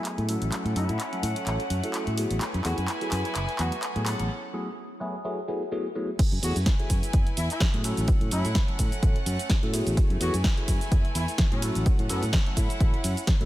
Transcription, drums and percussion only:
0.05 clap medium
0.05 closed hi-hat medium
0.18 closed hi-hat soft
0.29 open hi-hat loud
0.42 closed hi-hat medium
0.52 clap medium
0.52 closed hi-hat medium
0.66 closed hi-hat soft
0.76 open hi-hat loud
0.89 closed hi-hat medium
1.00 clap medium
1.00 closed hi-hat medium
1.13 closed hi-hat soft
1.23 open hi-hat loud
1.36 closed hi-hat medium
1.47 clap medium
1.47 closed hi-hat medium
1.60 closed hi-hat soft
1.70 open hi-hat loud
1.84 closed hi-hat medium
1.94 clap medium
1.94 closed hi-hat medium
2.07 closed hi-hat soft
2.18 open hi-hat loud
2.31 closed hi-hat medium
2.41 clap medium
2.41 closed hi-hat medium
2.54 closed hi-hat soft
2.65 clap medium
2.65 open hi-hat loud
2.78 closed hi-hat soft
2.88 clap medium
2.88 closed hi-hat medium
3.01 closed hi-hat soft
3.12 clap medium
3.12 open hi-hat loud
3.25 closed hi-hat soft
3.35 clap medium
3.35 closed hi-hat medium
3.49 closed hi-hat soft
3.59 clap medium
3.59 open hi-hat loud
3.72 closed hi-hat medium
3.83 clap medium
3.83 closed hi-hat medium
3.96 closed hi-hat soft
4.06 clap medium
4.06 open hi-hat loud
4.19 closed hi-hat medium
6.19 kick loud
6.19 closed hi-hat medium
6.19 ride medium
6.19 crash loud
6.19 cabasa soft
6.32 closed hi-hat soft
6.43 open hi-hat loud
6.43 ride medium
6.43 cabasa medium
6.56 closed hi-hat medium
6.56 cabasa soft
6.66 kick loud
6.66 snare loud
6.66 closed hi-hat medium
6.66 ride medium
6.66 cabasa soft
6.80 closed hi-hat soft
6.90 kick medium
6.90 open hi-hat loud
6.90 ride medium
6.90 cabasa medium
7.03 closed hi-hat medium
7.03 cabasa soft
7.13 kick loud
7.13 closed hi-hat medium
7.13 ride medium
7.13 cabasa soft
7.27 closed hi-hat soft
7.37 open hi-hat loud
7.37 ride medium
7.37 cabasa medium
7.50 closed hi-hat medium
7.50 cabasa soft
7.60 kick loud
7.60 snare loud
7.60 closed hi-hat medium
7.60 ride medium
7.60 cabasa soft
7.74 closed hi-hat soft
7.84 open hi-hat loud
7.84 ride medium
7.84 cabasa medium
7.97 closed hi-hat medium
7.97 cabasa soft
8.08 kick loud
8.08 closed hi-hat medium
8.08 ride medium
8.08 cabasa soft
8.21 closed hi-hat soft
8.31 open hi-hat loud
8.31 ride medium
8.31 cabasa medium
8.45 closed hi-hat medium
8.45 cabasa soft
8.55 kick loud
8.55 snare loud
8.55 closed hi-hat medium
8.55 ride medium
8.55 cabasa soft
8.68 closed hi-hat soft
8.79 kick medium
8.79 open hi-hat loud
8.79 ride medium
8.79 cabasa medium
8.92 closed hi-hat medium
8.92 cabasa soft
9.03 kick loud
9.03 closed hi-hat medium
9.03 ride medium
9.03 cabasa soft
9.16 closed hi-hat soft
9.26 open hi-hat loud
9.26 ride medium
9.26 cabasa medium
9.39 closed hi-hat medium
9.39 cabasa soft
9.50 kick loud
9.50 snare loud
9.50 closed hi-hat medium
9.50 ride medium
9.50 cabasa soft
9.63 closed hi-hat soft
9.74 open hi-hat loud
9.74 ride medium
9.74 cabasa medium
9.87 closed hi-hat medium
9.87 cabasa soft
9.97 kick loud
9.97 closed hi-hat medium
9.97 ride medium
9.97 cabasa soft
10.10 closed hi-hat soft
10.21 open hi-hat loud
10.21 ride medium
10.21 cabasa medium
10.34 closed hi-hat medium
10.34 cabasa soft
10.44 kick loud
10.44 snare loud
10.44 closed hi-hat medium
10.44 ride medium
10.44 cabasa soft
10.57 closed hi-hat soft
10.68 kick medium
10.68 open hi-hat loud
10.68 ride medium
10.68 cabasa medium
10.81 closed hi-hat medium
10.81 cabasa soft
10.92 kick loud
10.92 closed hi-hat medium
10.92 ride medium
10.92 cabasa soft
11.05 closed hi-hat soft
11.15 open hi-hat loud
11.15 ride medium
11.15 cabasa medium
11.28 closed hi-hat medium
11.28 cabasa soft
11.38 kick loud
11.38 snare loud
11.38 closed hi-hat medium
11.38 ride medium
11.38 cabasa soft
11.52 closed hi-hat soft
11.62 open hi-hat loud
11.62 ride medium
11.62 cabasa medium
11.75 closed hi-hat medium
11.75 cabasa soft
11.86 kick loud
11.86 closed hi-hat medium
11.86 ride medium
11.86 cabasa soft
11.99 closed hi-hat soft
12.09 open hi-hat loud
12.09 ride medium
12.09 cabasa medium
12.23 closed hi-hat medium
12.23 cabasa soft
12.33 kick loud
12.33 snare loud
12.33 closed hi-hat medium
12.33 ride medium
12.33 cabasa soft
12.46 closed hi-hat soft
12.57 kick medium
12.57 open hi-hat loud
12.57 ride medium
12.57 cabasa medium
12.70 closed hi-hat medium
12.70 cabasa soft
12.80 kick loud
12.80 closed hi-hat medium
12.80 ride medium
12.80 cabasa soft
12.94 closed hi-hat soft
13.04 open hi-hat loud
13.04 ride medium
13.04 cabasa medium
13.17 closed hi-hat medium
13.17 cabasa soft
13.27 kick loud
13.27 snare loud
13.27 closed hi-hat medium
13.27 ride medium
13.27 cabasa soft
13.41 closed hi-hat soft

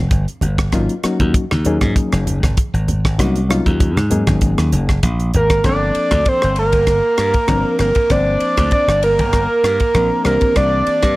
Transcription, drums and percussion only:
0.11 kick loud
0.11 closed hi-hat medium
0.28 closed hi-hat soft
0.41 closed hi-hat medium
0.41 low conga medium
0.58 kick medium
0.58 cross-stick medium
0.58 closed hi-hat soft
0.72 kick medium
0.72 cross-stick medium
0.72 closed hi-hat medium
0.89 closed hi-hat soft
1.03 cross-stick medium
1.03 closed hi-hat medium
1.20 kick medium
1.20 closed hi-hat soft
1.20 high conga medium
1.34 kick loud
1.34 closed hi-hat medium
1.51 cross-stick medium
1.51 high conga medium
1.65 closed hi-hat medium
1.65 low conga medium
1.81 kick medium
1.81 cross-stick medium
1.81 closed hi-hat soft
1.81 low conga medium
1.96 kick medium
1.96 closed hi-hat medium
2.12 cross-stick medium
2.12 closed hi-hat soft
2.27 closed hi-hat medium
2.27 high conga medium
2.43 kick medium
2.43 cross-stick medium
2.43 closed hi-hat soft
2.43 high conga medium
2.57 kick loud
2.57 closed hi-hat medium
2.75 closed hi-hat soft
2.88 closed hi-hat medium
2.88 low conga medium
3.05 kick medium
3.05 cross-stick medium
3.19 kick medium
3.19 cross-stick medium
3.19 closed hi-hat medium
3.36 closed hi-hat soft
3.50 cross-stick medium
3.50 closed hi-hat medium
3.66 kick medium
3.66 closed hi-hat soft
3.80 kick loud
3.80 closed hi-hat medium
3.97 cross-stick medium
3.97 closed hi-hat soft
3.97 high conga medium
4.11 closed hi-hat medium
4.11 low conga medium
4.27 kick medium
4.27 cross-stick medium
4.27 closed hi-hat soft
4.27 low conga medium
4.41 kick medium
4.41 closed hi-hat medium
4.58 cross-stick medium
4.58 closed hi-hat soft
4.72 closed hi-hat medium
4.72 high conga medium
4.89 kick medium
4.89 cross-stick medium
5.03 kick loud
5.03 closed hi-hat medium
5.20 closed hi-hat soft
5.34 closed hi-hat medium
5.34 low conga medium
5.50 kick medium
5.50 cross-stick medium
5.50 closed hi-hat soft
5.64 kick medium
5.64 cross-stick medium
5.64 ride medium
5.95 ride medium
6.11 kick medium
6.11 cross-stick medium
6.11 ride medium
6.25 kick loud
6.25 ride medium
6.42 cross-stick medium
6.56 ride medium
6.73 kick medium
6.73 ride medium
6.87 kick medium
6.87 cross-stick medium
6.87 ride medium
7.18 cross-stick medium
7.18 ride medium
7.34 kick medium
7.34 ride medium
7.48 kick medium
7.48 cross-stick medium
7.48 ride medium
7.79 cross-stick medium
7.79 ride medium
7.95 kick medium
7.95 ride medium
8.10 kick medium
8.10 cross-stick medium
8.10 ride medium
8.40 ride medium
8.57 kick medium
8.57 cross-stick medium
8.57 ride medium
8.71 kick medium
8.71 ride medium
8.89 cross-stick medium
9.03 ride medium
9.19 kick medium
9.19 ride medium
9.33 kick medium
9.33 cross-stick medium
9.33 ride medium
9.64 cross-stick medium
9.64 ride medium
9.80 kick medium
9.80 ride soft
9.94 kick medium
9.94 cross-stick medium
9.94 ride medium
10.25 cross-stick medium
10.25 ride medium
10.41 kick medium
10.41 ride medium
10.56 kick medium
10.56 cross-stick medium
10.56 ride medium
10.87 ride medium
11.02 kick medium
11.02 cross-stick medium
11.02 ride medium

